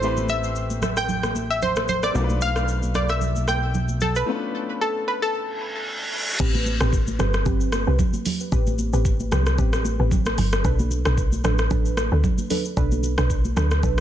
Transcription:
Already playing: analog synth bass A1, synth pluck C5
0.01 grand piano A3 C4 E4 G4 B4, shaker
0.17 high conga, shaker
0.29 synth pluck E5, high conga, shaker
0.44 shaker
0.56 shaker
0.70 high conga, shaker
0.82 cross-stick, low conga, shaker
0.96 synth pluck G5, cross-stick, shaker
1.09 low conga, shaker
1.23 cross-stick, high conga, shaker
1.35 high conga, shaker
1.51 synth pluck E5
1.62 synth pluck C5, low conga, shaker
1.76 cross-stick, high conga, shaker
1.88 synth pluck C5, low conga, shaker
2.03 synth pluck D5, cross-stick, shaker
2.14 analog synth bass B1, grand piano A3 B3 D4 F4 A#4, shaker
2.24 grand piano B4
2.30 high conga, shaker
2.41 synth pluck F5, high conga, shaker
2.56 cross-stick, shaker
2.68 shaker
2.83 high conga, shaker
2.94 synth pluck D5, cross-stick, low conga, shaker
3.09 synth pluck E5, cross-stick, shaker
3.21 low conga, shaker
3.36 high conga, shaker
3.48 synth pluck G5, cross-stick, high conga, shaker
3.74 low conga, shaker
3.88 high conga, shaker
4.01 synth pluck A4, low conga, shaker
4.15 synth pluck B4, shaker
4.26 grand piano A3 B3 C#4 F4 B4
4.34 grand piano D4
4.81 synth pluck A4
5.08 synth pluck B4
5.22 synth pluck A4
5.34 reverse cymbal
6.40 log drum bass A1, synth stab C4 G4 B4, kick, crash, shaker
6.54 high conga, shaker
6.66 high conga, shaker
6.81 log drum bass A1, synth stab C4 G4 B4, cross-stick, shaker
6.93 kick, shaker
7.07 high conga, shaker
7.19 log drum bass G1, synth stab C4 G4 B4, cross-stick, low conga, shaker
7.34 cross-stick, shaker
7.46 log drum bass G1, synth stab C4 G4 B4, kick, low conga, shaker
7.61 shaker
7.72 cross-stick, high conga, shaker
7.87 log drum bass C2, synth stab C4 G4 B4
7.99 kick, low conga, shaker
8.13 high conga, shaker
8.26 open hi-hat, low conga, shaker
8.40 shaker
8.52 log drum bass A1, synth stab C4 G4 B4, kick, shaker
8.67 high conga, shaker
8.78 high conga, shaker
8.93 log drum bass A1, synth stab C4 G4 B4, shaker
9.05 kick, shaker
9.20 high conga, shaker
9.32 log drum bass C2, synth stab C4 G4 B4, cross-stick, low conga, shaker
9.46 cross-stick, shaker
9.58 log drum bass A1, synth stab C4 G4 B4, kick, low conga, shaker
9.73 cross-stick, shaker
9.85 high conga, shaker
9.99 log drum bass A1, synth stab C4 G4 B4
10.11 kick, low conga, shaker
10.26 cross-stick, high conga, shaker
10.38 log drum bass G1, open hi-hat, low conga, shaker
10.53 cross-stick, shaker
10.64 log drum bass B1, synth stab D4 A4 B4, kick, shaker
10.79 high conga, shaker
10.91 high conga, shaker
11.05 log drum bass B1, synth stab D4 A4 B4, cross-stick, shaker
11.18 kick, shaker
11.32 high conga, shaker
11.44 log drum bass A1, synth stab D4 A4 B4, cross-stick, low conga, shaker
11.59 cross-stick, shaker
11.71 log drum bass A1, synth stab D4 A4 B4, kick, low conga, shaker
11.85 shaker
11.97 cross-stick, high conga, shaker
12.12 log drum bass D2, synth stab D4 A4 B4
12.24 kick, low conga, shaker
12.38 high conga, shaker
12.50 synth stab D4 A4 B4, open hi-hat, low conga, shaker
12.65 shaker
12.77 log drum bass B1, synth stab D4 A4 B4, kick, shaker
12.92 high conga, shaker
13.03 high conga, shaker
13.18 log drum bass B1, synth stab D4 A4 B4, cross-stick, shaker
13.30 kick, shaker
13.45 high conga, shaker
13.56 log drum bass D2, synth stab D4 A4 B4, cross-stick, low conga, shaker
13.71 cross-stick, shaker
13.83 log drum bass B1, synth stab D4 A4 B4, kick, low conga, shaker

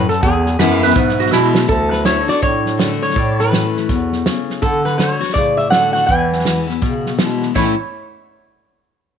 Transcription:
Already playing: steel-string acoustic guitar F#2, pedal steel guitar A4 F#5
0.09 resonator guitar played with a steel bar A4, snare
0.23 bass clarinet E2, steel-string acoustic guitar E2, resonator guitar played with a steel bar G#4, kick, snare
0.46 snare
0.59 bass clarinet F#2, steel-string acoustic guitar E3 G#3 B3 E4, pedal steel guitar B4 F#5, snare, hi-hat pedal
0.82 steel-string acoustic guitar B3 E4, resonator guitar played with a steel bar B4, pedal steel guitar E5, snare
0.90 snare
0.95 bass clarinet G#2, steel-string acoustic guitar B2, resonator guitar played with a steel bar F#4, kick, snare
1.08 snare
1.20 resonator guitar played with a steel bar F#4, snare
1.26 snare
1.32 bass clarinet B2, steel-string acoustic guitar E3 G#3 B3 E4, snare, hi-hat pedal
1.55 snare
1.68 bass clarinet D2, steel-string acoustic guitar D3, resonator guitar played with a steel bar A4, kick, snare
1.91 resonator guitar played with a steel bar B4, snare
2.05 steel-string acoustic guitar D3 A3 D4 F#4, pedal steel guitar E4 A4, resonator guitar played with a steel bar C#5, snare, hi-hat pedal
2.28 steel-string acoustic guitar D4 F#4, pedal steel guitar D4, resonator guitar played with a steel bar D5, snare
2.42 steel-string acoustic guitar A2, bass clarinet A2, resonator guitar played with a steel bar C#5, kick, snare
2.66 snare
2.78 steel-string acoustic guitar D3 A3 D4 F#4, snare, hi-hat pedal
3.02 resonator guitar played with a steel bar C#5, snare
3.10 snare
3.14 steel-string acoustic guitar A2, bass clarinet A2, pedal steel guitar A4 D5, kick, snare
3.37 resonator guitar played with a steel bar B4, pedal steel guitar C#5, snare
3.51 steel-string acoustic guitar E3 A3 C#4 E4, snare, hi-hat pedal
3.76 snare
3.89 bass clarinet E2, steel-string acoustic guitar B2, kick, snare
4.12 snare
4.26 steel-string acoustic guitar C#3, snare, hi-hat pedal
4.50 snare
4.62 steel-string acoustic guitar D3, bass clarinet D3, resonator guitar played with a steel bar A4, kick, snare
4.85 resonator guitar played with a steel bar B4, snare
4.98 steel-string acoustic guitar D3 A3 D4 F#4, resonator guitar played with a steel bar C#5, snare, hi-hat pedal
5.21 steel-string acoustic guitar D4 F#4, snare
5.29 snare
5.34 steel-string acoustic guitar A2, bass clarinet C#3, resonator guitar played with a steel bar D5, kick, snare
5.57 resonator guitar played with a steel bar E5, snare
5.70 bass clarinet D3, steel-string acoustic guitar D3 A3 D4, resonator guitar played with a steel bar F#5, snare, hi-hat pedal
5.75 steel-string acoustic guitar F#4
5.93 steel-string acoustic guitar D4 F#4, resonator guitar played with a steel bar F#5, snare
6.07 steel-string acoustic guitar E2, bass clarinet E3, resonator guitar played with a steel bar G#5, kick, snare
6.32 snare
6.39 snare
6.45 steel-string acoustic guitar E3 G#3 B3 E4, snare, hi-hat pedal
6.67 steel-string acoustic guitar B3 E4, snare
6.82 steel-string acoustic guitar B2, bass clarinet C#3, kick, snare
6.96 resonator guitar played with a steel bar F#5
7.06 snare
7.18 bass clarinet B2, steel-string acoustic guitar E3 G#3 B3 E4, snare, hi-hat pedal
7.42 snare
7.54 steel-string acoustic guitar A2 E3 A3 C#4 E4, bass clarinet A2, resonator guitar played with a steel bar C#5, kick, crash

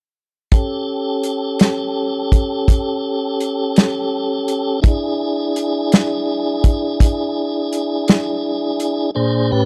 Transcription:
0.52 tonewheel organ C#4 G4 A4, kick, closed hi-hat
1.24 closed hi-hat
1.59 snare, closed hi-hat
2.32 kick, closed hi-hat
2.68 kick, closed hi-hat
3.40 closed hi-hat
3.76 snare, closed hi-hat
4.48 closed hi-hat
4.82 tonewheel organ D4 E4 G#4, kick, closed hi-hat
5.56 closed hi-hat
5.92 snare, closed hi-hat
6.64 kick, closed hi-hat
7.00 kick, closed hi-hat
7.73 closed hi-hat
8.08 snare, closed hi-hat
8.80 closed hi-hat
9.15 tonewheel organ A#2 D4 G#4 C5
9.52 tonewheel organ A2 C#4 G4 B4

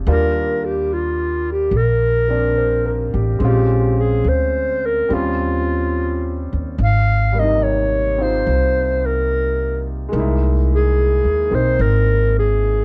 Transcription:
0.07 upright bass D#2, upright piano G3 A#3 D4 F4, clarinet A#4
0.65 clarinet G4
0.94 clarinet F4
1.52 clarinet G4
1.71 upright bass A#1
1.77 clarinet A#4
2.28 upright piano A#3 C4 D4 D5
2.57 upright piano C5
2.85 upright piano A#4
3.14 upright bass A1, upright piano G4
3.39 upright bass A#1, upright piano G#3 C4 C#4, clarinet G4
3.45 upright piano F4
4.00 clarinet G#4
4.24 upright bass D2
4.29 clarinet C5
4.86 clarinet A#4
5.09 upright bass D#2, upright piano G3 C4 C#4
5.13 upright piano F4, clarinet F4
6.53 upright bass D#2
6.78 upright bass G#1
6.83 clarinet F5
7.32 upright piano G3 A#3
7.39 upright piano C3 D#4, clarinet D#5
7.63 clarinet C#5
8.18 upright piano C4 D#4 F4
8.22 clarinet C5
8.47 upright bass C2
9.06 clarinet A#4
10.09 upright piano G#3 A#3
10.13 upright bass C2, upright piano D#4
10.19 upright piano E4
10.74 clarinet G#4
11.24 upright bass D#2
11.50 upright bass B1, upright piano A#3 C4 D#4
11.55 clarinet C5
11.79 upright bass G#1, clarinet A#4
12.39 clarinet G#4

